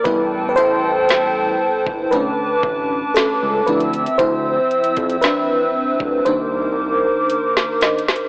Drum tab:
HH |x-----------x-----------x-----------------------x-----------------------x-----------x--x--x--x--|x-----------x--x--x--x--x-----------------------x-----------------------x-----------x---x---x---|
SD |------------------------o-----------------------------------------------o-----------------------|------------------------o-----------------------------------------------------o-----o-----o-----|
BD |o-----------------------------------------o-----------------o-----------------------------------|o-----------------o-----------------------o-----------------------------------------------------|